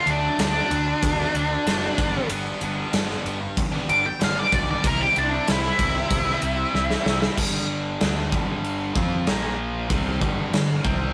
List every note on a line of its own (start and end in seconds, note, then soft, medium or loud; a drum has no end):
0.00 0.10 D4 medium
0.06 0.27 D2 medium
0.06 0.37 D3 medium
0.06 0.25 F#3 medium
0.06 0.40 D4 medium
0.06 ride medium
0.10 0.23 A3 medium
0.10 0.22 D4 medium
0.22 0.38 F#3 medium
0.22 0.40 A3 medium
0.22 0.41 D4 medium
0.38 0.60 D2 loud
0.38 0.69 D3 medium
0.38 0.70 F#3 loud
0.38 0.72 A3 loud
0.38 0.73 D4 loud
0.38 2.27 D4 loud
0.38 snare loud
0.38 ride medium
0.70 0.92 D2 medium
0.70 1.19 D3 medium
0.70 0.87 F#3 medium
0.70 0.86 A3 medium
0.70 0.86 D4 medium
0.70 ride medium
0.87 muted distorted electric guitar stroke soft
1.03 1.24 D2 medium
1.03 kick loud
1.03 ride loud
1.19 1.34 F#3 medium
1.19 1.35 A3 medium
1.19 1.36 D4 medium
1.34 1.55 D2 loud
1.34 1.65 D3 medium
1.34 1.51 F#3 medium
1.34 1.50 A3 medium
1.34 1.50 D4 medium
1.34 ride medium
1.51 muted distorted electric guitar stroke soft
1.66 1.87 F#1 medium
1.66 1.96 D3 medium
1.66 1.97 F#3 medium
1.66 1.98 A3 medium
1.66 1.98 D4 medium
1.66 snare loud
1.66 ride medium
1.98 2.19 G1 medium
1.98 2.28 G2 medium
1.98 2.28 D3 medium
1.98 2.16 G3 loud
1.98 2.15 B3 loud
1.98 2.13 D4 loud
1.98 kick loud
1.98 ride medium
2.14 2.30 G3 medium
2.14 2.30 B3 medium
2.14 2.30 D4 medium
2.29 2.51 G1 loud
2.29 2.91 G2 loud
2.29 2.60 D3 loud
2.29 2.62 G3 loud
2.29 2.62 B3 loud
2.29 2.63 D4 loud
2.29 ride loud
2.61 2.82 G1 medium
2.61 2.92 D3 medium
2.61 2.79 G3 medium
2.61 2.77 B3 medium
2.61 2.76 D4 loud
2.61 ride medium
2.77 2.93 G3 medium
2.77 2.93 B3 medium
2.77 2.94 D4 medium
2.92 3.14 G1 loud
2.92 3.56 G2 loud
2.92 3.23 D3 loud
2.92 3.26 G3 loud
2.92 3.25 B3 loud
2.92 3.26 D4 loud
2.92 snare loud
2.92 ride medium
3.10 snare soft
3.24 3.46 G1 medium
3.24 3.40 D3 medium
3.24 3.41 G3 medium
3.24 3.40 B3 medium
3.24 3.40 D4 medium
3.24 ride medium
3.41 muted distorted electric guitar stroke medium
3.57 3.78 G1 medium
3.57 kick loud
3.57 ride medium
3.72 3.90 G3 medium
3.72 3.89 B3 medium
3.72 3.90 D4 medium
3.88 4.10 G1 loud
3.88 4.04 D3 medium
3.88 4.05 G3 medium
3.88 4.04 B3 medium
3.88 4.04 D4 medium
3.88 4.05 D6 loud
3.88 ride medium
4.05 4.21 G5 medium
4.05 muted distorted electric guitar stroke medium
4.20 4.42 G1 medium
4.20 4.82 G2 medium
4.20 4.82 D3 loud
4.20 4.71 G3 medium
4.20 4.69 B3 medium
4.20 4.67 D4 medium
4.20 4.39 F5 loud
4.20 snare loud
4.20 ride medium
4.39 4.53 D5 medium
4.52 4.73 B1 medium
4.52 4.69 D5 medium
4.52 kick loud
4.52 ride medium
4.68 4.85 G3 medium
4.68 4.83 B3 medium
4.68 4.82 D4 medium
4.68 4.85 D5 medium
4.84 5.05 C2 medium
4.84 5.13 C3 loud
4.84 5.14 G3 loud
4.84 5.15 C4 loud
4.84 5.16 E4 loud
4.84 5.01 A#4 loud
4.84 kick loud
4.84 ride medium
5.01 5.16 G4 loud
5.14 5.37 C2 medium
5.14 5.45 C3 medium
5.14 5.32 G3 medium
5.14 5.30 C4 medium
5.14 5.48 D4 medium
5.14 5.29 E4 medium
5.14 ride medium
5.30 5.46 G3 medium
5.30 5.48 C4 medium
5.30 5.49 E4 medium
5.46 5.69 C2 medium
5.46 5.77 C3 loud
5.46 5.79 G3 loud
5.46 5.80 C4 loud
5.46 5.80 E4 loud
5.46 snare loud
5.46 ride medium
5.51 7.35 E4 loud
5.79 6.00 C2 loud
5.79 6.26 C3 medium
5.79 5.95 G3 medium
5.79 5.94 C4 medium
5.79 5.94 E4 medium
5.79 kick medium
5.79 ride medium
5.95 muted distorted electric guitar stroke soft
6.10 6.31 C2 loud
6.10 kick loud
6.10 ride loud
6.27 6.42 G3 medium
6.27 6.43 C4 medium
6.27 6.43 E4 medium
6.42 6.63 C2 medium
6.42 6.71 C3 medium
6.42 6.56 G3 medium
6.42 6.56 C4 medium
6.42 6.55 E4 medium
6.42 ride medium
6.57 muted distorted electric guitar stroke soft
6.72 6.95 C2 medium
6.72 7.34 C3 medium
6.72 7.22 G3 loud
6.72 7.21 C4 loud
6.72 7.19 E4 loud
6.72 snare medium
6.91 snare medium
7.06 7.27 C2 loud
7.06 snare loud
7.20 7.36 G3 medium
7.20 7.36 C4 medium
7.20 7.35 E4 medium
7.20 snare loud
7.36 7.97 G1 medium
7.36 7.99 G2 loud
7.36 7.99 D3 loud
7.36 8.00 G3 loud
7.36 kick loud
7.36 crash loud
7.36 crash medium
8.00 8.31 D2 medium
8.00 8.31 D3 medium
8.00 8.32 A3 loud
8.00 8.32 D4 loud
8.00 snare loud
8.00 crash medium
8.31 8.92 G1 medium
8.31 8.94 G2 medium
8.31 8.94 D3 medium
8.31 8.94 G3 loud
8.31 kick loud
8.64 crash medium
8.95 9.25 F2 loud
8.95 9.26 F3 medium
8.95 9.26 C4 loud
8.95 9.26 F4 loud
8.95 kick loud
9.27 9.87 A#1 medium
9.27 9.89 A#2 medium
9.27 9.89 F3 loud
9.27 9.90 A#3 medium
9.27 snare loud
9.27 crash medium
9.89 10.19 C2 medium
9.89 10.20 C3 medium
9.89 10.21 G3 loud
9.89 10.21 C4 loud
9.89 kick loud
9.89 crash medium
10.20 10.51 G1 loud
10.20 10.52 G2 medium
10.20 10.52 D3 loud
10.20 10.52 G3 loud
10.20 kick loud
10.53 10.82 G1 medium
10.53 10.78 G2 medium
10.53 10.79 D3 medium
10.53 snare loud
10.53 crash medium
10.84 11.13 C2 medium
10.84 11.13 C3 medium
10.84 11.13 G3 medium
10.84 11.13 C4 loud
10.84 kick loud